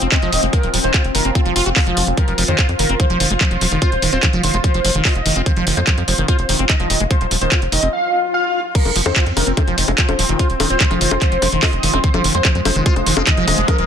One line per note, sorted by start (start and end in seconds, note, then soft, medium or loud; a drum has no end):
0.00 0.08 F1 medium
0.00 7.93 F3 medium
0.00 2.20 C4 medium
0.00 0.08 C4 medium
0.00 closed hi-hat soft
0.12 0.18 C4 loud
0.12 0.39 D#5 medium
0.12 kick loud
0.12 clap loud
0.12 closed hi-hat medium
0.22 0.28 F1 medium
0.22 0.31 F3 loud
0.22 closed hi-hat soft
0.32 0.39 D#1 loud
0.32 0.41 D#3 medium
0.32 open hi-hat loud
0.43 0.49 F1 medium
0.43 0.46 G#3 medium
0.43 closed hi-hat soft
0.53 0.62 F3 medium
0.53 0.73 A#4 loud
0.53 kick loud
0.53 closed hi-hat medium
0.63 0.69 D#1 medium
0.63 0.69 F3 medium
0.63 closed hi-hat soft
0.74 0.80 D#1 loud
0.74 0.80 F3 medium
0.74 open hi-hat loud
0.84 0.90 D#1 medium
0.84 0.93 D#3 medium
0.84 1.04 C5 loud
0.84 closed hi-hat soft
0.94 1.03 F4 loud
0.94 kick loud
0.94 clap loud
0.94 closed hi-hat medium
1.04 1.11 F1 medium
1.04 closed hi-hat soft
1.15 1.21 F1 loud
1.15 1.24 D#3 medium
1.15 1.28 A#4 medium
1.15 open hi-hat loud
1.25 1.31 F1 loud
1.25 1.31 C4 medium
1.25 closed hi-hat soft
1.35 1.41 C4 loud
1.35 1.62 F4 medium
1.35 kick loud
1.35 closed hi-hat medium
1.46 1.52 F1 medium
1.46 1.54 F3 loud
1.46 closed hi-hat soft
1.56 1.62 F1 loud
1.56 1.65 F4 loud
1.56 open hi-hat loud
1.66 1.72 F1 medium
1.66 1.70 F#4 loud
1.66 closed hi-hat soft
1.76 1.80 G#3 loud
1.76 2.03 F4 medium
1.76 kick loud
1.76 clap loud
1.76 open hi-hat medium
1.87 1.93 F1 medium
1.87 2.09 F3 loud
1.87 closed hi-hat soft
1.97 2.03 F1 loud
1.97 open hi-hat loud
2.07 2.13 F1 medium
2.07 2.11 F#3 medium
2.07 closed hi-hat soft
2.17 2.26 F3 medium
2.17 7.95 F4 medium
2.17 2.38 A#4 loud
2.17 kick loud
2.17 closed hi-hat medium
2.28 2.34 F1 medium
2.28 2.34 F3 medium
2.28 closed hi-hat soft
2.38 2.44 F1 loud
2.38 2.44 F3 medium
2.38 open hi-hat loud
2.48 2.54 F2 medium
2.48 2.57 D#3 medium
2.48 2.68 C5 medium
2.59 2.67 F4 loud
2.59 kick loud
2.59 clap loud
2.59 closed hi-hat medium
2.69 2.75 F2 medium
2.69 closed hi-hat soft
2.79 2.85 F1 loud
2.79 2.88 D#3 medium
2.79 2.93 A#4 medium
2.79 open hi-hat loud
2.89 2.95 F1 medium
2.89 2.95 C4 medium
2.89 closed hi-hat soft
3.00 3.06 D#3 loud
3.00 3.26 C5 loud
3.00 kick loud
3.00 closed hi-hat medium
3.10 3.16 F1 medium
3.10 3.19 F3 loud
3.10 closed hi-hat soft
3.20 3.26 F1 loud
3.20 3.29 D#3 medium
3.20 open hi-hat loud
3.30 3.37 F1 medium
3.30 3.34 G#3 medium
3.30 closed hi-hat soft
3.41 3.50 F3 medium
3.41 3.68 C5 loud
3.41 kick loud
3.41 clap loud
3.41 closed hi-hat medium
3.51 3.57 F1 medium
3.51 3.57 F3 medium
3.51 closed hi-hat soft
3.61 3.67 D#1 loud
3.61 3.67 F3 medium
3.61 open hi-hat loud
3.72 3.78 F1 medium
3.72 3.80 D#3 medium
3.72 closed hi-hat soft
3.82 3.91 F4 loud
3.82 4.02 C5 loud
3.82 kick loud
3.82 closed hi-hat medium
3.92 3.98 D#1 medium
3.92 closed hi-hat soft
4.02 4.08 D#1 loud
4.02 4.11 D#3 medium
4.02 open hi-hat loud
4.13 4.19 D#1 medium
4.13 4.19 C4 medium
4.13 4.33 C5 loud
4.13 closed hi-hat soft
4.23 4.29 D#3 loud
4.23 kick loud
4.23 clap loud
4.23 closed hi-hat medium
4.33 4.39 F1 medium
4.33 4.42 F3 loud
4.33 closed hi-hat soft
4.43 4.50 F1 loud
4.43 4.52 D#3 medium
4.43 4.57 C5 medium
4.43 open hi-hat loud
4.54 4.60 F1 medium
4.54 4.57 G#3 medium
4.54 closed hi-hat soft
4.64 4.73 F3 medium
4.64 4.91 C5 medium
4.64 kick loud
4.64 closed hi-hat medium
4.74 4.80 F1 medium
4.74 4.80 F3 medium
4.74 closed hi-hat soft
4.85 4.91 F1 loud
4.85 4.90 F3 medium
4.85 open hi-hat loud
4.95 5.01 F1 medium
4.95 5.04 D#3 medium
4.95 closed hi-hat soft
5.05 5.14 F4 loud
5.05 5.32 D#5 medium
5.05 kick loud
5.05 clap loud
5.05 open hi-hat medium
5.15 5.21 F1 medium
5.15 closed hi-hat soft
5.26 5.32 F1 loud
5.26 5.35 D#3 medium
5.26 open hi-hat loud
5.36 5.42 F1 medium
5.36 5.42 C4 medium
5.36 closed hi-hat soft
5.46 5.52 D#3 loud
5.46 5.66 C5 medium
5.46 kick loud
5.46 closed hi-hat medium
5.56 5.63 F1 medium
5.56 5.65 F3 loud
5.56 closed hi-hat soft
5.67 5.73 F1 loud
5.67 5.76 D#3 medium
5.67 open hi-hat loud
5.77 5.83 F2 medium
5.77 5.81 G#3 medium
5.77 5.97 C5 medium
5.77 closed hi-hat soft
5.87 5.96 F3 medium
5.87 kick loud
5.87 clap loud
5.87 closed hi-hat medium
5.98 6.04 F2 medium
5.98 6.03 F3 medium
5.98 closed hi-hat soft
6.08 6.14 F1 loud
6.08 6.14 F3 medium
6.08 6.21 C5 medium
6.08 open hi-hat loud
6.18 6.24 F1 medium
6.18 6.27 D#3 medium
6.18 closed hi-hat soft
6.28 6.37 F4 loud
6.28 6.55 C5 medium
6.28 kick loud
6.28 closed hi-hat medium
6.39 6.45 F1 medium
6.39 closed hi-hat soft
6.49 6.55 F1 loud
6.49 6.58 D#3 medium
6.49 open hi-hat loud
6.59 6.65 F1 medium
6.59 6.65 C4 medium
6.69 6.75 D#3 loud
6.69 6.96 D#5 loud
6.69 kick loud
6.69 clap loud
6.69 closed hi-hat loud
6.80 6.86 F1 medium
6.80 6.89 F3 loud
6.80 closed hi-hat soft
6.90 6.96 D#1 loud
6.90 6.99 D#3 medium
6.90 open hi-hat loud
7.00 7.06 F1 medium
7.00 7.04 G#3 medium
7.00 closed hi-hat soft
7.11 7.19 F3 medium
7.11 7.31 C5 loud
7.11 kick loud
7.11 closed hi-hat medium
7.21 7.27 D#1 medium
7.21 7.27 F3 medium
7.21 closed hi-hat soft
7.31 7.37 D#1 loud
7.31 7.37 F3 medium
7.31 open hi-hat loud
7.41 7.48 D#1 medium
7.41 7.50 D#3 medium
7.41 7.62 C5 loud
7.41 closed hi-hat soft
7.52 7.61 F4 loud
7.52 kick loud
7.52 clap loud
7.52 closed hi-hat medium
7.62 7.68 F1 medium
7.62 closed hi-hat soft
7.72 7.78 F1 loud
7.72 7.81 D#3 medium
7.72 7.86 D#5 medium
7.72 open hi-hat loud
7.82 7.89 F1 loud
7.82 7.88 C4 medium
7.82 closed hi-hat soft
7.93 8.20 F5 medium
7.93 swell medium
8.34 8.61 F5 loud
8.75 8.84 F3 medium
8.75 13.86 F3 medium
8.75 12.06 C4 medium
8.75 13.86 F4 medium
8.75 8.95 A#4 loud
8.75 kick loud
8.75 closed hi-hat medium
8.75 crash loud
8.85 8.91 F1 medium
8.85 8.91 F3 medium
8.85 closed hi-hat soft
8.85 high bongo soft
8.96 9.02 F1 loud
8.96 9.01 F3 medium
8.96 open hi-hat loud
9.06 9.12 F2 medium
9.06 9.15 D#3 medium
9.06 9.26 C5 loud
9.06 13.86 C5 medium
9.06 high bongo medium
9.16 9.23 C4 medium
9.16 9.25 F4 loud
9.16 kick loud
9.16 clap loud
9.16 closed hi-hat medium
9.26 9.32 F2 medium
9.26 9.33 C4 medium
9.26 closed hi-hat soft
9.37 9.43 F1 loud
9.37 9.45 D#3 medium
9.37 9.50 A#4 medium
9.37 12.71 C6 medium
9.37 open hi-hat loud
9.37 high bongo soft
9.47 9.53 F1 medium
9.47 9.53 C4 medium
9.47 closed hi-hat soft
9.57 9.63 D#3 loud
9.57 9.84 C5 medium
9.57 kick loud
9.57 closed hi-hat loud
9.57 high bongo medium
9.67 9.74 F1 medium
9.67 9.76 F3 loud
9.67 closed hi-hat soft
9.78 9.84 F1 loud
9.78 9.87 D#3 medium
9.78 open hi-hat loud
9.88 9.94 F1 medium
9.88 9.92 G#3 medium
9.88 13.86 F5 loud
9.88 closed hi-hat soft
9.88 high bongo soft
9.98 10.07 F3 medium
9.98 10.25 C5 loud
9.98 kick loud
9.98 clap loud
9.98 closed hi-hat loud
10.09 10.15 F1 medium
10.09 10.14 F3 medium
10.09 closed hi-hat soft
10.09 high bongo medium
10.19 10.25 D#1 loud
10.19 10.25 F3 medium
10.19 10.25 C4 medium
10.19 open hi-hat loud
10.29 10.35 F1 medium
10.29 10.38 D#3 medium
10.29 10.36 C4 medium
10.29 closed hi-hat soft
10.39 10.48 F4 loud
10.39 10.59 C5 loud
10.39 kick loud
10.39 closed hi-hat medium
10.39 high bongo soft
10.50 10.56 D#1 medium
10.50 closed hi-hat soft
10.60 10.66 D#1 loud
10.60 10.69 D#3 medium
10.60 open hi-hat loud
10.60 high bongo medium
10.70 10.76 D#1 medium
10.70 10.76 C4 medium
10.70 10.78 F4 loud
10.70 10.90 C5 loud
10.70 closed hi-hat soft
10.80 10.86 D#3 loud
10.80 kick loud
10.80 clap loud
10.80 closed hi-hat medium
10.91 10.97 F1 medium
10.91 11.00 F3 loud
10.91 closed hi-hat soft
10.91 high bongo soft
11.01 11.07 F1 loud
11.01 11.10 D#3 medium
11.01 11.14 C5 medium
11.01 open hi-hat loud
11.11 11.17 F1 medium
11.11 11.15 G#3 medium
11.11 closed hi-hat soft
11.11 high bongo medium
11.21 11.30 F3 medium
11.21 11.48 C5 loud
11.21 kick loud
11.21 clap medium
11.21 closed hi-hat loud
11.32 11.38 F1 medium
11.32 11.38 F3 medium
11.32 closed hi-hat soft
11.42 11.48 F1 loud
11.42 11.48 F3 medium
11.42 open hi-hat loud
11.42 high bongo soft
11.52 11.58 F1 medium
11.52 11.61 D#3 medium
11.52 closed hi-hat soft
11.63 11.71 F4 loud
11.63 11.89 D#5 loud
11.63 kick loud
11.63 clap loud
11.63 open hi-hat medium
11.63 high bongo medium
11.73 11.79 F1 medium
11.73 closed hi-hat soft
11.83 11.89 F1 loud
11.83 11.92 D#3 medium
11.83 open hi-hat loud
11.93 12.00 F1 medium
11.93 11.99 C4 medium
11.93 high bongo soft
12.04 12.10 D#3 loud
12.04 13.86 G#3 medium
12.04 12.24 C5 loud
12.04 kick loud
12.04 closed hi-hat medium
12.14 12.20 F1 medium
12.14 12.23 F3 loud
12.14 closed hi-hat soft
12.14 high bongo medium
12.24 12.30 F1 loud
12.24 12.33 D#3 medium
12.24 open hi-hat loud
12.35 12.41 F2 medium
12.35 12.38 G#3 medium
12.35 12.55 C5 loud
12.35 closed hi-hat soft
12.45 12.54 F3 medium
12.45 kick loud
12.45 clap loud
12.45 closed hi-hat medium
12.45 high bongo soft
12.55 12.61 F2 medium
12.55 12.61 F3 medium
12.55 closed hi-hat soft
12.65 12.71 F1 loud
12.65 12.71 F3 medium
12.65 12.79 C5 medium
12.65 13.86 D#6 medium
12.65 open hi-hat loud
12.65 high bongo medium
12.76 12.82 F1 medium
12.76 12.85 D#3 medium
12.76 closed hi-hat soft
12.86 12.95 F4 loud
12.86 13.13 C5 medium
12.86 kick loud
12.86 closed hi-hat medium
12.96 13.02 F1 medium
12.96 closed hi-hat soft
12.96 high bongo soft
13.06 13.13 F1 loud
13.06 13.15 D#3 medium
13.06 open hi-hat loud
13.17 13.23 F1 medium
13.17 13.23 C4 medium
13.17 high bongo medium
13.27 13.33 D#3 loud
13.27 13.54 D#5 loud
13.27 kick loud
13.27 clap loud
13.27 closed hi-hat medium
13.37 13.43 F1 medium
13.37 13.46 F3 loud
13.37 closed hi-hat soft
13.48 13.54 D#1 loud
13.48 13.56 D#3 medium
13.48 open hi-hat loud
13.48 high bongo soft
13.58 13.64 F1 medium
13.58 13.61 G#3 medium
13.58 closed hi-hat soft
13.68 13.77 F3 medium
13.68 13.86 A#4 loud
13.68 kick loud
13.68 closed hi-hat medium
13.68 high bongo medium
13.78 13.84 D#1 medium
13.78 13.84 F3 medium
13.78 closed hi-hat soft